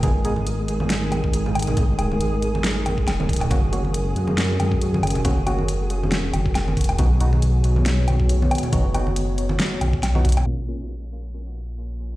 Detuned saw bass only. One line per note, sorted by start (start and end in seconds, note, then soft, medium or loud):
0.03 0.67 G#1 medium
0.68 1.54 G#1 loud
1.55 2.19 G#1 loud
2.21 3.49 G#1 loud
3.51 4.15 F#1 loud
4.16 5.02 F#2 medium
5.03 5.94 F#1 loud
5.94 6.20 F1 loud
6.20 6.32 E1 loud
6.34 6.79 F#1 loud
6.79 6.97 F1 loud
6.99 7.63 B1 medium
7.64 8.49 B1 medium
8.73 9.58 F#1 loud
9.81 10.23 B1 loud
10.25 10.45 B1 loud